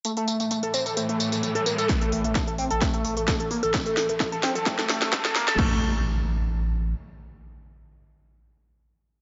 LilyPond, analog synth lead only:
\new Staff \with { instrumentName = "Analog synth lead" } { \time 4/4 \key c \mixolydian \tempo 4 = 130 a16 a16 a16 a16 a16 a'16 c'16 a'16 a16 a16 a16 a16 a16 a'16 bes16 a'16 | a16 a16 a16 a16 a16 a'16 c'16 a'16 a16 a16 a16 a16 a16 a'16 bes16 a'16 | a16 a16 a16 a16 a16 a'16 c'16 a'16 a16 a16 a16 a16 a16 a'16 bes16 a'16 | a8 r2. r8 |
r1 | }